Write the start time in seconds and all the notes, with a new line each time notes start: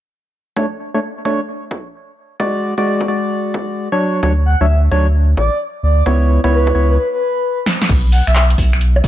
0.56 A3 D4 C#5, kick
0.94 A3 D4 C#5
1.25 A3 D4 C#5, kick
1.71 kick
2.40 G#3 F#4 D5, kick
2.78 G#3 F#4 D5, kick
3.01 kick
3.08 G#3 F#4 D5
3.54 kick
3.92 F#3 D4 C#5
4.23 D2 F#3 D4 C#5, kick
4.46 F#5
4.61 D2 F#3 D4 C#5 E5
4.69 E5
4.92 D2 F#3 D4 C#5, kick
5.37 A1 D5, kick
5.83 D2 D5
6.06 C#2 B3 E4 C#5, kick
6.44 C#2 B3 E4 C#5, kick
6.52 B4
6.67 kick
6.75 C#2 B3 E4 C#5
6.90 B4
6.98 B4
7.13 B4
7.66 snare
7.82 snare
7.89 B1, kick, closed hi-hat, crash
8.12 F#5, open hi-hat
8.27 B1 E5, finger snap, closed hi-hat
8.35 E5, clap
8.50 closed hi-hat
8.58 B1, kick, open hi-hat
8.73 finger snap, closed hi-hat
8.81 closed hi-hat
8.96 high bongo
9.04 F#1 D5, kick, open hi-hat